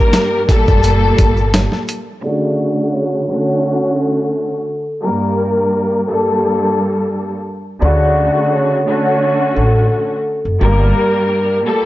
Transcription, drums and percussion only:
0.13 snare loud
0.13 snare medium
0.13 closed hi-hat loud
0.13 shaker medium
0.49 kick medium
0.49 closed hi-hat medium
0.49 shaker medium
0.67 kick loud
0.67 shaker medium
0.83 closed hi-hat loud
0.83 shaker medium
1.18 kick medium
1.18 closed hi-hat medium
1.18 shaker soft
1.37 shaker soft
1.54 snare loud
1.54 closed hi-hat loud
1.54 shaker medium
1.72 snare soft
1.88 closed hi-hat medium
1.88 shaker soft

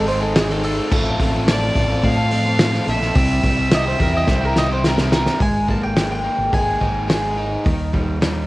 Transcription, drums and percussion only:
0.08 open hi-hat medium
0.36 snare loud
0.36 open hi-hat medium
0.50 snare soft
0.64 open hi-hat medium
0.92 kick loud
0.92 crash loud
1.20 kick medium
1.20 open hi-hat medium
1.48 snare loud
1.48 open hi-hat medium
1.75 kick medium
1.75 open hi-hat medium
2.03 kick medium
2.03 open hi-hat medium
2.31 open hi-hat medium
2.59 snare loud
2.59 open hi-hat medium
2.73 snare soft
2.88 open hi-hat medium
3.01 snare soft
3.15 kick loud
3.15 open hi-hat medium
3.43 kick medium
3.43 open hi-hat medium
3.71 snare loud
3.71 open hi-hat medium
4.00 kick medium
4.00 open hi-hat medium
4.27 kick medium
4.27 snare medium
4.56 snare medium
4.84 snare loud
4.98 snare medium
5.12 snare loud
5.26 snare medium
5.40 kick loud
5.40 open hi-hat medium
5.68 kick medium
5.96 snare loud
5.96 open hi-hat medium
6.53 kick loud
6.53 open hi-hat medium
6.81 kick medium
7.10 snare loud
7.10 open hi-hat medium
7.66 kick loud
7.66 open hi-hat soft
7.94 kick medium
8.22 snare loud
8.22 open hi-hat soft

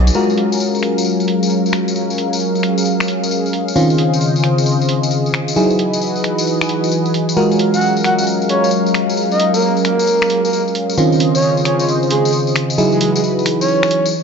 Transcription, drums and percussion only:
0.07 closed hi-hat soft
0.07 tambourine medium
0.14 tambourine medium
0.30 tambourine soft
0.38 open hi-hat loud
0.52 tambourine medium
0.60 tambourine medium
0.75 tambourine soft
0.83 finger snap soft
0.83 open hi-hat loud
0.98 tambourine medium
1.05 tambourine soft
1.20 tambourine soft
1.28 open hi-hat medium
1.43 tambourine medium
1.50 tambourine medium
1.66 tambourine soft
1.73 finger snap medium
1.73 open hi-hat loud
1.88 tambourine medium
1.96 tambourine medium
2.10 tambourine soft
2.18 open hi-hat loud
2.33 tambourine medium
2.40 tambourine medium
2.55 tambourine soft
2.63 finger snap soft
2.63 open hi-hat loud
2.78 tambourine medium
2.85 tambourine medium
3.00 finger snap medium
3.00 tambourine soft
3.08 open hi-hat medium
3.24 tambourine medium
3.31 tambourine medium
3.46 tambourine soft
3.53 open hi-hat loud
3.68 tambourine medium
3.76 tambourine medium
3.90 tambourine soft
3.98 open hi-hat medium
4.13 tambourine medium
4.21 tambourine medium
4.36 tambourine soft
4.44 finger snap soft
4.44 open hi-hat medium
4.58 tambourine medium
4.66 tambourine medium
4.82 tambourine soft
4.89 open hi-hat loud
5.03 tambourine medium
5.11 tambourine medium
5.26 tambourine soft
5.34 finger snap medium
5.34 open hi-hat medium
5.48 tambourine medium
5.56 tambourine medium
5.70 tambourine soft
5.79 open hi-hat medium
5.93 tambourine medium
6.01 tambourine medium
6.16 tambourine soft
6.24 finger snap soft
6.24 open hi-hat medium
6.38 tambourine medium
6.47 tambourine medium
6.61 finger snap medium
6.61 tambourine soft
6.69 open hi-hat medium
6.84 tambourine medium
6.91 tambourine medium
7.06 tambourine soft
7.14 open hi-hat medium
7.29 tambourine medium
7.37 tambourine medium
7.51 tambourine soft
7.59 open hi-hat medium
7.74 tambourine medium
7.81 tambourine medium
7.97 tambourine soft
8.04 finger snap soft
8.04 open hi-hat medium
8.19 tambourine medium
8.27 tambourine medium
8.42 tambourine soft
8.49 open hi-hat medium
8.64 tambourine medium
8.71 tambourine medium
8.86 tambourine soft
8.94 finger snap soft
8.94 open hi-hat medium
9.09 tambourine medium
9.17 tambourine medium
9.32 tambourine soft
9.40 open hi-hat medium
9.54 tambourine medium
9.62 tambourine medium
9.77 tambourine soft
9.85 finger snap soft
9.85 open hi-hat loud
9.99 tambourine medium
10.07 tambourine medium
10.22 finger snap medium
10.22 tambourine soft
10.30 open hi-hat medium
10.45 tambourine medium
10.53 tambourine medium
10.68 tambourine soft
10.75 open hi-hat loud
10.90 tambourine medium
10.97 tambourine medium
11.12 tambourine soft
11.20 open hi-hat loud
11.35 tambourine medium
11.42 tambourine medium
11.57 tambourine soft
11.65 finger snap soft
11.65 open hi-hat loud
11.79 tambourine medium
11.88 tambourine medium
12.03 tambourine soft
12.11 open hi-hat loud
12.25 tambourine medium
12.32 tambourine medium
12.47 tambourine soft
12.56 finger snap medium
12.56 open hi-hat loud
12.70 tambourine medium
12.78 tambourine medium
12.92 tambourine soft
13.01 open hi-hat loud
13.16 tambourine medium
13.24 tambourine medium
13.39 tambourine soft
13.46 finger snap soft
13.46 open hi-hat loud
13.61 tambourine medium
13.68 tambourine medium
13.83 finger snap medium
13.83 tambourine soft
13.91 open hi-hat loud
14.05 tambourine medium

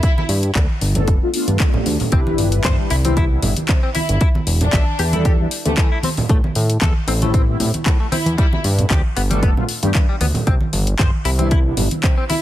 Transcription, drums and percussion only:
0.03 kick loud
0.03 closed hi-hat medium
0.18 high conga medium
0.29 open hi-hat loud
0.43 closed hi-hat medium
0.55 kick loud
0.55 clap loud
0.55 closed hi-hat medium
0.55 high conga medium
0.81 open hi-hat loud
0.95 closed hi-hat medium
0.95 high conga medium
0.95 low conga medium
1.08 kick loud
1.08 closed hi-hat medium
1.34 open hi-hat loud
1.48 closed hi-hat medium
1.48 high conga medium
1.60 kick loud
1.60 clap loud
1.60 closed hi-hat medium
1.74 low conga medium
1.86 open hi-hat loud
1.86 high conga medium
2.00 open hi-hat medium
2.00 low conga medium
2.12 kick loud
2.12 closed hi-hat medium
2.27 high conga loud
2.38 open hi-hat loud
2.52 closed hi-hat medium
2.64 kick loud
2.64 clap loud
2.64 closed hi-hat medium
2.64 high conga medium
2.90 open hi-hat loud
3.05 closed hi-hat medium
3.05 high conga medium
3.17 kick loud
3.17 closed hi-hat medium
3.42 open hi-hat loud
3.42 low conga medium
3.56 closed hi-hat medium
3.56 high conga medium
3.69 kick loud
3.69 clap loud
3.69 closed hi-hat medium
3.95 open hi-hat loud
3.95 high conga medium
4.09 closed hi-hat medium
4.21 kick loud
4.21 closed hi-hat medium
4.35 high conga medium
4.47 open hi-hat loud
4.61 closed hi-hat medium
4.61 low conga medium
4.73 kick loud
4.73 clap loud
4.73 closed hi-hat medium
4.73 high conga medium
4.99 open hi-hat loud
5.13 closed hi-hat medium
5.13 high conga medium
5.25 kick loud
5.25 closed hi-hat medium
5.51 open hi-hat loud
5.66 closed hi-hat medium
5.66 high conga medium
5.77 kick loud
5.77 clap loud
5.77 closed hi-hat medium
6.03 open hi-hat loud
6.03 high conga loud
6.17 open hi-hat medium
6.17 low conga loud
6.29 kick loud
6.29 closed hi-hat medium
6.44 high conga loud
6.55 open hi-hat loud
6.70 closed hi-hat medium
6.82 kick loud
6.82 clap loud
6.82 closed hi-hat medium
6.82 high conga medium
7.08 open hi-hat loud
7.22 closed hi-hat medium
7.22 high conga medium
7.34 kick loud
7.34 closed hi-hat medium
7.60 open hi-hat loud
7.60 low conga medium
7.74 closed hi-hat medium
7.74 high conga medium
7.86 kick loud
7.86 clap loud
7.86 closed hi-hat medium
8.12 open hi-hat loud
8.12 high conga loud
8.26 closed hi-hat medium
8.38 kick loud
8.38 closed hi-hat medium
8.53 high conga medium
8.64 open hi-hat loud
8.78 closed hi-hat medium
8.78 low conga medium
8.91 kick loud
8.91 clap loud
8.91 closed hi-hat medium
8.91 high conga medium
9.17 open hi-hat loud
9.31 closed hi-hat medium
9.31 high conga medium
9.43 kick loud
9.43 closed hi-hat medium
9.57 low conga medium
9.69 open hi-hat loud
9.83 closed hi-hat medium
9.83 high conga medium
9.95 kick loud
9.95 clap loud
9.95 closed hi-hat medium
10.21 open hi-hat loud
10.21 high conga loud
10.34 open hi-hat medium
10.34 low conga loud
10.47 kick loud
10.47 closed hi-hat medium
10.61 high conga medium
10.73 open hi-hat loud
10.87 closed hi-hat medium
10.99 kick loud
10.99 clap loud
10.99 closed hi-hat soft
10.99 high conga medium
11.25 open hi-hat loud
11.39 closed hi-hat medium
11.39 high conga medium
11.51 kick loud
11.51 closed hi-hat soft
11.77 open hi-hat loud
11.77 low conga medium
11.91 closed hi-hat medium
11.91 high conga medium
12.04 kick loud
12.04 clap loud
12.04 closed hi-hat medium
12.30 open hi-hat loud
12.30 high conga medium

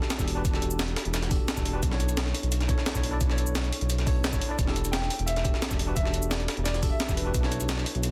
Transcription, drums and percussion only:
0.02 snare medium
0.10 snare loud
0.10 closed hi-hat medium
0.10 shaker soft
0.19 kick medium
0.19 snare soft
0.19 shaker medium
0.28 closed hi-hat medium
0.28 open hi-hat medium
0.45 kick loud
0.45 closed hi-hat medium
0.45 closed hi-hat loud
0.45 shaker medium
0.54 snare medium
0.62 closed hi-hat medium
0.62 shaker soft
0.71 shaker medium
0.79 snare loud
0.79 closed hi-hat medium
0.79 closed hi-hat loud
0.79 shaker soft
0.88 closed hi-hat soft
0.96 snare loud
0.96 closed hi-hat medium
0.96 open hi-hat medium
1.05 closed hi-hat soft
1.14 snare loud
1.14 closed hi-hat medium
1.14 shaker soft
1.22 snare soft
1.22 closed hi-hat soft
1.31 kick loud
1.31 closed hi-hat medium
1.31 open hi-hat medium
1.31 shaker soft
1.48 snare loud
1.48 closed hi-hat medium
1.48 shaker soft
1.57 kick medium
1.57 snare soft
1.57 shaker medium
1.65 closed hi-hat medium
1.65 open hi-hat medium
1.83 kick loud
1.83 closed hi-hat medium
1.83 closed hi-hat loud
1.83 shaker soft
1.91 snare soft
2.00 closed hi-hat medium
2.00 shaker soft
2.09 closed hi-hat soft
2.09 shaker medium
2.17 snare loud
2.17 closed hi-hat medium
2.17 shaker soft
2.26 snare medium
2.34 closed hi-hat medium
2.34 open hi-hat medium
2.43 closed hi-hat soft
2.52 closed hi-hat medium
2.52 shaker soft
2.60 snare soft
2.60 closed hi-hat soft
2.69 kick loud
2.69 closed hi-hat medium
2.69 shaker soft
2.78 snare medium
2.86 snare loud
2.86 closed hi-hat medium
2.86 shaker soft
2.95 kick medium
2.95 snare soft
2.95 shaker medium
3.03 closed hi-hat medium
3.03 open hi-hat medium
3.21 kick loud
3.21 closed hi-hat medium
3.21 shaker soft
3.30 snare medium
3.38 closed hi-hat medium
3.38 shaker soft
3.47 shaker medium
3.55 snare loud
3.55 closed hi-hat medium
3.55 shaker soft
3.64 closed hi-hat soft
3.73 closed hi-hat medium
3.73 open hi-hat medium
3.81 closed hi-hat soft
3.90 closed hi-hat medium
3.90 shaker soft
3.98 snare soft
3.98 closed hi-hat soft
4.07 kick loud
4.07 closed hi-hat medium
4.07 open hi-hat medium
4.07 shaker soft
4.24 snare loud
4.24 closed hi-hat medium
4.24 shaker soft
4.33 kick medium
4.33 snare soft
4.33 shaker medium
4.41 closed hi-hat medium
4.41 open hi-hat medium
4.59 kick loud
4.59 closed hi-hat medium
4.59 shaker soft
4.67 snare soft
4.76 closed hi-hat medium
4.76 shaker soft
4.85 closed hi-hat soft
4.85 shaker medium
4.93 snare loud
4.93 closed hi-hat medium
4.93 shaker soft
5.02 snare medium
5.10 closed hi-hat medium
5.10 open hi-hat medium
5.19 closed hi-hat soft
5.28 closed hi-hat medium
5.28 shaker soft
5.36 snare soft
5.36 closed hi-hat soft
5.45 kick loud
5.45 closed hi-hat medium
5.45 shaker soft
5.54 snare medium
5.62 snare loud
5.62 closed hi-hat medium
5.62 shaker soft
5.71 kick medium
5.71 snare soft
5.71 shaker medium
5.79 closed hi-hat medium
5.79 open hi-hat medium
5.97 kick loud
5.97 closed hi-hat medium
5.97 shaker soft
6.05 snare medium
6.14 closed hi-hat medium
6.14 shaker soft
6.23 shaker medium
6.31 snare loud
6.31 closed hi-hat medium
6.31 shaker soft
6.40 closed hi-hat soft
6.48 snare loud
6.48 closed hi-hat medium
6.48 open hi-hat medium
6.57 closed hi-hat soft
6.66 snare loud
6.66 closed hi-hat medium
6.66 shaker soft
6.74 snare soft
6.74 closed hi-hat soft
6.83 kick loud
6.83 closed hi-hat medium
6.83 open hi-hat medium
6.83 shaker soft
7.00 snare loud
7.00 closed hi-hat medium
7.00 shaker soft
7.09 kick medium
7.09 snare soft
7.09 shaker medium
7.17 closed hi-hat medium
7.17 open hi-hat medium
7.34 kick loud
7.34 closed hi-hat medium
7.34 shaker medium
7.43 snare soft
7.52 closed hi-hat medium
7.52 shaker soft
7.60 closed hi-hat soft
7.60 shaker medium
7.69 snare loud
7.69 closed hi-hat medium
7.69 shaker soft
7.78 snare medium
7.86 closed hi-hat medium
7.86 open hi-hat medium
7.95 closed hi-hat soft
8.03 closed hi-hat medium
8.03 shaker medium

